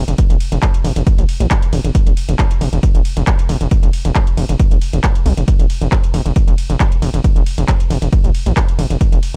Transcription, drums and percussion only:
0.08 closed hi-hat medium
0.18 kick loud
0.18 closed hi-hat loud
0.18 ride medium
0.30 closed hi-hat medium
0.40 open hi-hat loud
0.40 ride medium
0.52 closed hi-hat medium
0.62 kick loud
0.62 clap loud
0.62 closed hi-hat medium
0.62 ride medium
0.74 closed hi-hat medium
0.85 open hi-hat loud
0.85 ride medium
0.96 closed hi-hat medium
1.07 kick loud
1.07 closed hi-hat loud
1.07 ride medium
1.18 closed hi-hat medium
1.29 open hi-hat loud
1.29 ride medium
1.40 closed hi-hat medium
1.51 kick loud
1.51 clap loud
1.51 closed hi-hat loud
1.51 ride medium
1.62 closed hi-hat medium
1.73 open hi-hat loud
1.73 ride medium
1.84 closed hi-hat medium
1.95 kick loud
1.95 closed hi-hat loud
1.95 ride medium
2.07 closed hi-hat medium
2.17 open hi-hat loud
2.17 ride medium
2.29 closed hi-hat medium
2.39 kick loud
2.39 clap loud
2.39 closed hi-hat loud
2.39 ride medium
2.51 closed hi-hat medium
2.61 open hi-hat loud
2.61 ride medium
2.73 closed hi-hat medium
2.83 kick loud
2.83 closed hi-hat loud
2.83 ride medium
2.95 closed hi-hat medium
3.05 open hi-hat loud
3.05 ride medium
3.17 closed hi-hat medium
3.27 kick loud
3.27 clap loud
3.27 closed hi-hat medium
3.27 ride medium
3.39 closed hi-hat medium
3.49 open hi-hat loud
3.49 ride medium
3.61 closed hi-hat medium
3.71 kick loud
3.71 closed hi-hat medium
3.71 ride medium
3.83 closed hi-hat medium
3.93 open hi-hat loud
3.93 ride medium
4.05 closed hi-hat medium
4.15 kick loud
4.15 clap loud
4.15 closed hi-hat medium
4.15 ride medium
4.27 closed hi-hat medium
4.37 open hi-hat loud
4.37 ride medium
4.49 closed hi-hat medium
4.59 kick loud
4.59 closed hi-hat medium
4.59 ride medium
4.71 closed hi-hat medium
4.82 open hi-hat loud
4.82 ride medium
4.93 closed hi-hat medium
5.04 kick loud
5.04 clap loud
5.04 closed hi-hat medium
5.04 ride medium
5.15 closed hi-hat medium
5.26 open hi-hat loud
5.26 ride medium
5.37 closed hi-hat medium
5.48 kick loud
5.48 closed hi-hat medium
5.48 ride medium
5.59 closed hi-hat medium
5.70 open hi-hat loud
5.70 ride medium
5.82 closed hi-hat soft
5.92 kick loud
5.92 clap loud
5.92 closed hi-hat medium
5.92 ride medium
6.04 closed hi-hat medium
6.14 open hi-hat loud
6.14 ride medium
6.26 closed hi-hat medium
6.36 kick loud
6.36 closed hi-hat medium
6.36 ride medium
6.48 closed hi-hat medium
6.58 open hi-hat loud
6.58 ride medium
6.70 closed hi-hat medium
6.80 kick loud
6.80 clap loud
6.80 closed hi-hat medium
6.80 ride medium
6.92 closed hi-hat medium
7.02 open hi-hat loud
7.02 ride medium
7.14 closed hi-hat soft
7.24 kick loud
7.24 closed hi-hat medium
7.24 ride medium
7.36 closed hi-hat soft
7.46 open hi-hat loud
7.46 ride medium
7.58 closed hi-hat medium
7.68 kick loud
7.68 clap loud
7.68 closed hi-hat medium
7.68 ride medium
7.80 closed hi-hat medium
7.90 open hi-hat loud
7.90 ride medium
8.02 closed hi-hat soft
8.13 kick loud
8.13 closed hi-hat medium
8.13 ride medium
8.24 closed hi-hat medium
8.35 open hi-hat loud
8.35 ride medium
8.46 closed hi-hat medium
8.57 kick loud
8.57 clap loud
8.57 closed hi-hat medium
8.57 ride medium
8.68 closed hi-hat medium
8.79 open hi-hat loud
8.79 ride medium
8.90 closed hi-hat medium
9.01 kick loud
9.01 closed hi-hat medium
9.01 ride medium
9.12 closed hi-hat soft
9.23 open hi-hat loud
9.23 ride medium

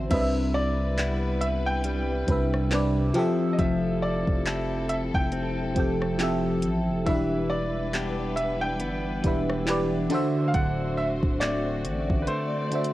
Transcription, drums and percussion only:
0.10 kick loud
0.10 closed hi-hat medium
0.10 crash loud
0.98 clap loud
0.98 closed hi-hat medium
1.41 closed hi-hat medium
1.84 closed hi-hat medium
2.28 kick medium
2.28 closed hi-hat medium
2.54 cross-stick medium
2.72 clap loud
2.72 closed hi-hat medium
3.14 closed hi-hat medium
3.59 kick loud
3.59 closed hi-hat medium
4.27 kick loud
4.46 clap loud
4.46 closed hi-hat medium
4.89 closed hi-hat medium
5.14 kick loud
5.32 closed hi-hat medium
5.76 kick medium
5.76 closed hi-hat medium
6.02 cross-stick medium
6.20 clap loud
6.20 closed hi-hat medium
6.62 closed hi-hat medium
7.07 kick loud
7.07 closed hi-hat medium
7.94 clap loud
7.94 closed hi-hat medium
8.37 closed hi-hat medium
8.80 closed hi-hat medium
9.24 kick medium
9.24 closed hi-hat medium
9.49 cross-stick loud
9.67 clap loud
9.67 closed hi-hat medium
10.10 closed hi-hat medium
10.54 kick loud
10.54 closed hi-hat medium
11.23 kick loud
11.41 clap loud
11.41 closed hi-hat medium
11.85 closed hi-hat medium
12.10 kick loud
12.27 closed hi-hat medium
12.72 closed hi-hat medium
12.84 closed hi-hat medium

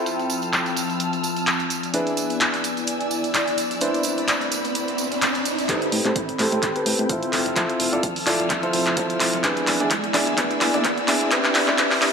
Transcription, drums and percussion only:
0.06 closed hi-hat medium
0.06 tambourine soft
0.19 closed hi-hat soft
0.19 tambourine soft
0.30 closed hi-hat medium
0.30 tambourine medium
0.42 closed hi-hat soft
0.42 tambourine soft
0.53 clap loud
0.53 closed hi-hat medium
0.53 tambourine soft
0.66 closed hi-hat soft
0.66 tambourine soft
0.77 closed hi-hat medium
0.77 tambourine medium
0.90 closed hi-hat soft
0.90 tambourine soft
1.00 closed hi-hat medium
1.00 tambourine soft
1.13 closed hi-hat soft
1.13 tambourine soft
1.23 closed hi-hat soft
1.23 tambourine medium
1.36 closed hi-hat soft
1.36 tambourine soft
1.47 clap loud
1.47 closed hi-hat medium
1.47 tambourine soft
1.59 closed hi-hat soft
1.59 tambourine soft
1.70 closed hi-hat medium
1.70 tambourine medium
1.83 closed hi-hat soft
1.83 tambourine soft
1.94 closed hi-hat medium
1.94 tambourine medium
2.07 closed hi-hat soft
2.07 tambourine soft
2.17 closed hi-hat medium
2.17 tambourine medium
2.30 closed hi-hat soft
2.30 tambourine soft
2.41 clap loud
2.41 closed hi-hat medium
2.41 tambourine soft
2.54 closed hi-hat soft
2.54 tambourine soft
2.64 closed hi-hat medium
2.64 tambourine medium
2.77 closed hi-hat soft
2.77 tambourine soft
2.87 closed hi-hat medium
2.87 tambourine soft
3.00 closed hi-hat soft
3.00 tambourine soft
3.11 closed hi-hat soft
3.11 tambourine medium
3.24 closed hi-hat soft
3.24 tambourine soft
3.34 clap loud
3.34 closed hi-hat medium
3.34 tambourine soft
3.48 closed hi-hat soft
3.48 tambourine soft
3.58 closed hi-hat medium
3.58 tambourine medium
3.71 closed hi-hat soft
3.71 tambourine soft
3.81 closed hi-hat medium
3.81 tambourine medium
3.94 closed hi-hat soft
3.94 tambourine soft
4.03 closed hi-hat medium
4.03 tambourine loud
4.18 closed hi-hat soft
4.18 tambourine soft
4.28 clap loud
4.28 closed hi-hat medium
4.28 tambourine soft
4.41 closed hi-hat soft
4.41 tambourine soft
4.52 closed hi-hat medium
4.52 tambourine medium
4.64 closed hi-hat soft
4.64 tambourine soft
4.75 closed hi-hat medium
4.75 tambourine medium
4.88 closed hi-hat soft
4.88 tambourine soft
4.98 closed hi-hat soft
4.98 tambourine medium
5.12 closed hi-hat soft
5.12 tambourine soft
5.22 clap loud
5.22 closed hi-hat medium
5.22 tambourine medium
5.34 closed hi-hat soft
5.34 tambourine soft
5.45 closed hi-hat medium
5.45 tambourine medium
5.58 closed hi-hat soft
5.58 tambourine soft
5.69 kick loud
5.69 clap soft
5.69 closed hi-hat medium
5.82 closed hi-hat soft
5.92 open hi-hat loud
6.05 clap soft
6.05 closed hi-hat soft
6.16 kick loud
6.16 closed hi-hat loud
6.29 closed hi-hat soft
6.39 kick medium
6.39 clap soft
6.39 open hi-hat loud
6.52 closed hi-hat soft
6.63 kick loud
6.63 clap medium
6.63 closed hi-hat medium
6.76 closed hi-hat soft
6.86 open hi-hat loud
6.99 closed hi-hat soft
7.09 kick loud
7.09 closed hi-hat loud
7.23 closed hi-hat soft
7.33 clap medium
7.33 open hi-hat loud
7.46 closed hi-hat soft
7.56 kick loud
7.56 clap medium
7.56 closed hi-hat medium
7.69 closed hi-hat soft
7.80 open hi-hat loud
7.93 closed hi-hat soft
8.03 kick loud
8.03 closed hi-hat medium
8.16 open hi-hat medium
8.27 clap medium
8.27 open hi-hat loud
8.40 closed hi-hat soft
8.50 kick loud
8.50 clap medium
8.50 closed hi-hat medium
8.63 closed hi-hat soft
8.73 open hi-hat loud
8.86 clap medium
8.86 closed hi-hat soft
8.97 kick loud
8.97 closed hi-hat medium
9.10 closed hi-hat soft
9.20 clap medium
9.20 open hi-hat loud
9.33 closed hi-hat soft
9.44 kick loud
9.44 clap medium
9.44 closed hi-hat medium
9.57 closed hi-hat soft
9.67 clap medium
9.67 open hi-hat loud
9.80 closed hi-hat soft
9.91 kick loud
9.91 clap medium
9.91 closed hi-hat medium
10.04 closed hi-hat soft
10.14 kick medium
10.14 clap medium
10.14 open hi-hat loud
10.27 closed hi-hat soft
10.38 kick loud
10.38 clap medium
10.38 closed hi-hat medium
10.51 closed hi-hat soft
10.61 clap medium
10.61 open hi-hat loud
10.74 closed hi-hat soft
10.84 kick loud
10.84 clap medium
10.84 closed hi-hat loud
10.98 closed hi-hat soft
11.08 clap medium
11.08 open hi-hat loud
11.21 closed hi-hat soft
11.31 kick loud
11.31 clap loud
11.31 closed hi-hat medium
11.44 clap medium
11.44 closed hi-hat soft
11.55 clap loud
11.55 open hi-hat loud
11.68 clap medium
11.68 closed hi-hat soft
11.78 kick loud
11.78 clap loud
11.78 closed hi-hat medium
11.91 clap medium
11.91 open hi-hat medium
12.02 clap loud
12.02 open hi-hat loud

